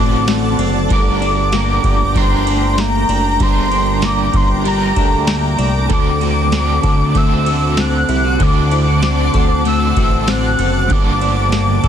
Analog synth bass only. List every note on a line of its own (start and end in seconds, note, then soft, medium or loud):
0.00 0.56 A1 medium
0.59 0.88 F#1 medium
0.90 1.80 G1 loud
1.84 3.05 G1 loud
3.09 3.39 F#1 medium
3.40 4.30 G1 loud
4.34 4.93 G1 loud
4.96 5.56 D2 medium
5.59 5.89 C2 medium
5.90 6.80 D2 loud
6.84 8.05 D2 loud
8.09 8.39 C2 medium
8.40 9.30 D2 loud
9.34 9.93 D2 loud
9.96 10.56 A1 medium
10.59 10.89 F#1 medium
10.90 11.80 G1 loud
11.84 11.88 G1 loud